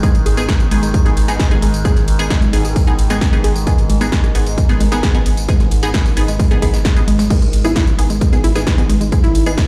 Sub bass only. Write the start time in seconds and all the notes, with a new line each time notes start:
0.26 G#1
0.37 G#1
0.71 G#1
0.83 G#1
1.17 G#1
1.28 G#1
1.62 G#1
1.74 G#1
2.08 G#1
2.19 G#1
2.53 G#1
2.65 G#1
2.99 G#1
3.10 G#1
3.44 G#1
3.55 G#1
3.89 G#1
4.01 G#1
4.35 G#1
4.46 G#1
4.80 G#1
4.92 G#1
5.26 G#1
5.37 G#1
5.71 G#1
5.83 G#1
6.17 G#1
6.28 G#1
6.62 G#1
6.74 G#1
7.08 G#1
7.19 G#1
7.53 G#1
7.65 G#1
7.99 G#1
8.10 G#1
8.44 G#1
8.55 G#1
8.89 G#1
9.01 G#1
9.35 G#1
9.46 G#1